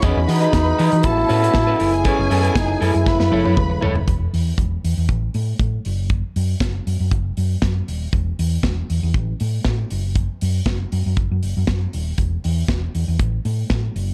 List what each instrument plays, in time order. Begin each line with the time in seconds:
0.02 fingered electric bass E2, french horn section E3 G#3 D#4 F#4, trombone C#4, clean electric guitar F#4 G#4 D#5, string section B4 B5, kick, closed hi-hat
0.17 fingered electric bass E2
0.28 fingered electric bass E3, trombone D#4, clean electric guitar F#4 G#4 D#5, open hi-hat
0.41 clean electric guitar F#4 G#4 D#5, closed hi-hat
0.53 fingered electric bass E2, muted clean electric guitar stroke, kick, snare, closed hi-hat
0.66 muted clean electric guitar stroke
0.78 fingered electric bass E3, clean electric guitar F#4 G#4 D#5, open hi-hat
0.92 fingered electric bass E3, muted clean electric guitar stroke, closed hi-hat
1.03 fingered electric bass A1, french horn section C#3 A3 B3, trombone E4, string section A4 A5, muted clean electric guitar stroke, kick, closed hi-hat
1.17 muted clean electric guitar stroke
1.29 fingered electric bass A2, clean electric guitar C#4 F#4 B4, open hi-hat
1.42 clean electric guitar C#4 F#4 B4, closed hi-hat
1.54 fingered electric bass A2, kick, snare, closed hi-hat
1.67 clean electric guitar C#4 F#4 B4
1.79 fingered electric bass F#1, french horn section A2 G#3 E4, clean electric guitar E4 A4 B4, string section G#4 G#5, open hi-hat
1.93 muted clean electric guitar stroke, closed hi-hat
2.04 trombone C#4, clean electric guitar E4 A4 B4, kick, closed hi-hat
2.19 fingered electric bass F#1
2.30 fingered electric bass F#2, clean electric guitar E4 A4 B4, open hi-hat
2.43 clean electric guitar E4 A4 B4, closed hi-hat
2.55 fingered electric bass F#1, trombone D#4, muted clean electric guitar stroke, kick, snare, closed hi-hat
2.69 muted clean electric guitar stroke
2.81 fingered electric bass F#2, clean electric guitar E4 A4 B4, trombone E4, open hi-hat
2.94 fingered electric bass F#2, muted clean electric guitar stroke, closed hi-hat
3.06 fingered electric bass F#1, french horn section C#3 A3, string section B4 B5, muted clean electric guitar stroke, kick, snare
3.20 fingered electric bass F#2, muted clean electric guitar stroke, snare
3.32 fingered electric bass F#1, clean electric guitar E4 A4 C#5, high tom
3.45 fingered electric bass F#2, clean electric guitar E4 A4 C#5, high tom
3.57 fingered electric bass E1, kick, mid tom
3.70 muted clean electric guitar stroke
3.81 fingered electric bass D#1, clean electric guitar E4 A4 C#5, floor tom
3.95 muted clean electric guitar stroke, floor tom
4.08 fingered electric bass E1, kick, closed hi-hat
4.33 fingered electric bass E2, open hi-hat
4.58 fingered electric bass E1, kick, closed hi-hat
4.84 fingered electric bass E2, open hi-hat
4.97 fingered electric bass E2
5.09 fingered electric bass A1, kick, closed hi-hat
5.34 fingered electric bass A2, open hi-hat
5.59 fingered electric bass A2, kick, closed hi-hat
5.85 fingered electric bass F#1, open hi-hat
6.10 kick, closed hi-hat
6.36 fingered electric bass F#2, open hi-hat
6.60 fingered electric bass F#1, kick, snare, closed hi-hat
6.87 fingered electric bass F#2, open hi-hat
7.00 fingered electric bass F#2
7.11 fingered electric bass F#1, kick, closed hi-hat
7.37 fingered electric bass F#2, open hi-hat
7.62 fingered electric bass F#2, kick, snare, closed hi-hat
7.88 fingered electric bass D#1, open hi-hat
8.13 fingered electric bass E1, kick, closed hi-hat
8.39 fingered electric bass E2, open hi-hat
8.63 fingered electric bass E1, kick, snare, closed hi-hat
8.90 fingered electric bass E2, open hi-hat
9.03 fingered electric bass E2
9.14 fingered electric bass A1, kick, closed hi-hat
9.40 fingered electric bass A2, open hi-hat
9.65 fingered electric bass A2, kick, snare
9.90 fingered electric bass F#1, open hi-hat
10.15 kick, closed hi-hat
10.41 fingered electric bass F#2, open hi-hat
10.66 fingered electric bass F#1, kick, snare, closed hi-hat
10.92 fingered electric bass F#2, open hi-hat
11.06 fingered electric bass F#2
11.17 fingered electric bass F#1, kick, closed hi-hat
11.31 fingered electric bass F#2
11.43 fingered electric bass F#1, open hi-hat
11.57 fingered electric bass F#2
11.67 fingered electric bass F#2, kick, snare, closed hi-hat
11.93 fingered electric bass D#1, open hi-hat
12.18 fingered electric bass E1, kick, closed hi-hat
12.44 fingered electric bass E2, open hi-hat
12.68 fingered electric bass E1, kick, snare, closed hi-hat
12.95 fingered electric bass E2, open hi-hat
13.08 fingered electric bass E2
13.19 fingered electric bass A1, kick, closed hi-hat
13.45 fingered electric bass A2, open hi-hat
13.70 fingered electric bass A2, kick, snare, closed hi-hat
13.96 fingered electric bass F#1, open hi-hat